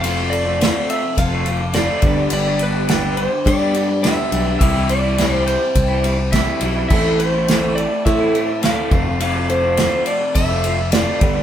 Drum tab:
CC |--------|--------|--------|x-------|
RD |xxxxxxxx|xxxxxxxx|xxxxxxxx|-xxxxxxx|
SD |--o---o-|--o---o-|--o---o-|--o---o-|
BD |----o--o|----o---|o---o-o-|o---o--o|

CC |--------|
RD |xxxxxxxx|
SD |--o---o-|
BD |----o--o|